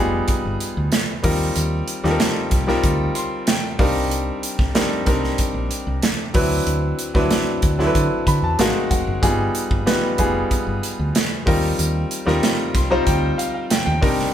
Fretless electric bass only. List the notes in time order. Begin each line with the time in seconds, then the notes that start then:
Already playing: F1
0.45 G1
0.77 D2
1.24 D#2
1.56 D#2
2.04 D#2
2.52 C2
2.84 D2
3.79 C2
4.59 C2
5.07 C2
5.54 A#1
5.87 C2
6.35 D2
6.67 D2
7.15 D2
7.63 D2
7.95 D3
8.27 D3
8.42 E2
8.58 G#1
8.91 F1
9.07 F#1
9.23 G1
9.71 G1
10.19 F1
10.67 G1
10.99 D2
11.47 D#2
11.79 D#2
12.27 D#2
12.75 C2
13.07 D2
13.87 D#2
14.02 C3